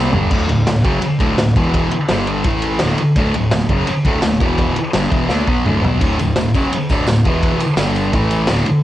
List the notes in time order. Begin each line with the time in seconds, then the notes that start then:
Already playing: C2 C3 G3 C4
0.12 G1 G2 D3 G3, floor tom
0.31 D1 D2 A2 D3, kick, crash
0.49 D1 D2 A2, ride
0.67 D1 D2 A2, snare, ride
0.84 F#1 F#2 C#3 F#3, kick, ride
1.02 muted distorted electric guitar stroke, muted fingered electric bass stroke, ride
1.19 D1 D2 A2 D3, kick, ride
1.38 D1 D2 A2, snare, ride
1.56 E1 E2 B2 E3, kick, ride
1.74 kick, ride
1.91 muted fingered electric bass stroke, muted distorted electric guitar stroke, ride
2.09 G1 G2 D3 G3, snare, ride
2.27 ride
2.44 A1 A2 E3 A3, kick, ride
2.62 ride
2.79 D1 D2 A2 D3, snare, ride
2.98 muted fingered electric bass stroke, muted distorted electric guitar stroke, ride
3.16 D1 D2 A2 D3, kick, ride
3.34 D1 D2 A2, ride
3.51 D1 D2 A2, snare, ride
3.69 F#1 F#2 C#3 F#3, kick, ride
3.87 muted fingered electric bass stroke, muted distorted electric guitar stroke, ride
4.05 D1 D2 A2 D3, kick, ride
4.22 D1 D2 A2, snare, ride
4.40 E1 E2 B2 E3, kick, ride
4.58 kick, ride
4.76 muted distorted electric guitar stroke, muted fingered electric bass stroke, ride
4.93 G1 G2 D3 G3, snare, ride
5.11 E1 E2 B2 E3, kick, ride
5.29 D2 D3 A3 D4, snare
5.48 B1 B2 F#3 B3, kick
5.65 D1 D2 A2 D3, mid tom
5.83 B1 B2 F#3 B3, floor tom
6.00 D1 D2 A2 D3, kick, ride, tambourine, splash
6.12 tambourine
6.19 D1 D2 A2, ride, tambourine
6.35 D1 D2 A2, snare, ride, tambourine
6.46 tambourine
6.54 F#1 F#2 C#3 F#3, kick, ride, tambourine
6.62 tambourine
6.71 muted fingered electric bass stroke, muted distorted electric guitar stroke, ride, tambourine
6.82 tambourine
6.89 D1 D2 A2 D3, kick, ride, tambourine
7.06 D1 D2 A2, snare, ride, tambourine
7.16 tambourine
7.25 E1 E2 B2 E3, kick, ride
7.42 kick, ride, tambourine
7.51 tambourine
7.60 muted distorted electric guitar stroke, muted fingered electric bass stroke, ride, tambourine
7.77 G1 G2 D3 G3, snare, ride, tambourine
7.88 tambourine
7.95 ride, tambourine
8.05 tambourine
8.13 A1 A2 E3 A3, kick, ride, tambourine
8.22 tambourine
8.31 ride, tambourine
8.47 D1 D2 A2 D3, snare, ride, tambourine
8.59 tambourine
8.66 muted distorted electric guitar stroke, muted fingered electric bass stroke, ride